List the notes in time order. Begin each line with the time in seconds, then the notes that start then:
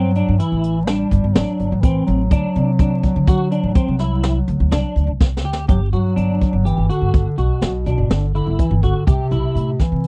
Already playing: G2 F#3 C4
0.15 D4, closed hi-hat
0.29 G2
0.39 E3 E4, closed hi-hat
0.52 A1
0.64 closed hi-hat
0.85 G3 D4, snare, closed hi-hat
1.11 G1, kick, closed hi-hat
1.24 G1
1.33 A1 F#3 D4, snare, closed hi-hat
1.59 G1, closed hi-hat
1.72 A1
1.81 E3 C4, kick, closed hi-hat
2.06 A1 F#3, closed hi-hat
2.31 D2 D4, kick, closed hi-hat
2.55 C3, closed hi-hat
2.79 D4, kick, snare, closed hi-hat
3.03 kick, closed hi-hat
3.16 D3
3.27 F#4, kick, snare, closed hi-hat
3.51 D4, closed hi-hat
3.63 A1
3.75 C4, kick, closed hi-hat
3.88 C2
3.99 E4, snare, closed hi-hat
4.23 snare, closed hi-hat
4.48 D2, closed hi-hat
4.60 D2
4.71 C2 D4, snare, closed hi-hat
4.96 D2, closed hi-hat
5.07 C2
5.20 kick, snare
5.37 snare
5.44 D2 G4
5.53 snare
5.68 G1 F#3 G4, kick, closed hi-hat
5.93 G2 F#3 F#4, closed hi-hat
6.16 G1 D4, closed hi-hat
6.41 kick, closed hi-hat
6.53 G1
6.65 E3 G4, closed hi-hat
6.78 G1
6.90 D3 F#4, closed hi-hat
7.01 G2
7.14 G1, kick, closed hi-hat
7.38 B1 B2 F#4, closed hi-hat
7.62 B1 B2, snare, closed hi-hat
7.86 B2 D4, kick, closed hi-hat
7.98 G1
8.10 G1 D3, snare, closed hi-hat
8.34 D3 E4, closed hi-hat
8.47 G1
8.59 E3, kick, closed hi-hat
8.71 G1
8.82 D3 F#4, kick, closed hi-hat
9.07 C2 C3 G4, kick, closed hi-hat
9.31 B1 E4, closed hi-hat
9.55 A2, closed hi-hat
9.80 E3, kick, snare, closed hi-hat
9.92 C3
10.04 closed hi-hat